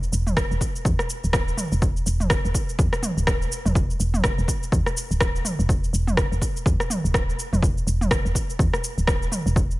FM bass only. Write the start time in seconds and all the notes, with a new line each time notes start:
0.12 E1
0.51 E1
0.85 E2
1.24 D1
1.72 E1
2.06 E1
2.45 E1
2.79 E2
3.17 D1
3.66 E1
4.00 E1
4.38 E1
4.72 E2
5.11 D1
5.59 E1
5.93 E1
6.32 E1
6.66 E2
7.04 D1
7.53 E1
7.87 E1
8.25 E1
8.59 E2
8.98 D1
9.46 E1